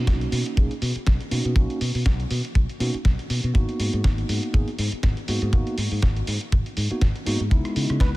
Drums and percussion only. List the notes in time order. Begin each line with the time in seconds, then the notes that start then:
0.07 kick, snare, closed hi-hat
0.21 closed hi-hat
0.32 open hi-hat
0.46 closed hi-hat
0.57 kick, closed hi-hat
0.71 closed hi-hat
0.82 open hi-hat
0.96 closed hi-hat
1.07 kick, snare, closed hi-hat
1.21 closed hi-hat
1.31 open hi-hat
1.45 closed hi-hat
1.56 kick, closed hi-hat
1.70 closed hi-hat
1.81 open hi-hat
1.95 open hi-hat
2.06 kick, snare
2.20 closed hi-hat
2.31 open hi-hat
2.45 closed hi-hat
2.55 kick, closed hi-hat
2.69 closed hi-hat
2.80 open hi-hat
2.94 closed hi-hat
3.05 kick, snare, closed hi-hat
3.19 closed hi-hat
3.30 open hi-hat
3.44 closed hi-hat
3.55 kick, closed hi-hat
3.69 closed hi-hat
3.80 open hi-hat
3.93 closed hi-hat
4.04 kick, snare, closed hi-hat
4.18 closed hi-hat
4.29 open hi-hat
4.43 closed hi-hat
4.54 kick, closed hi-hat
4.68 closed hi-hat
4.79 open hi-hat
4.92 closed hi-hat
5.03 kick, snare, closed hi-hat
5.17 closed hi-hat
5.28 open hi-hat
5.42 closed hi-hat
5.53 kick, closed hi-hat
5.67 closed hi-hat
5.78 open hi-hat
5.92 open hi-hat
6.02 kick, snare, closed hi-hat
6.16 closed hi-hat
6.27 open hi-hat
6.41 closed hi-hat
6.52 kick, closed hi-hat
6.66 closed hi-hat
6.77 open hi-hat
6.91 closed hi-hat
7.01 kick, snare, closed hi-hat
7.16 closed hi-hat
7.26 open hi-hat
7.40 closed hi-hat
7.51 kick, closed hi-hat
7.65 cross-stick, closed hi-hat
7.76 open hi-hat
7.90 cross-stick, closed hi-hat
8.00 kick, snare, closed hi-hat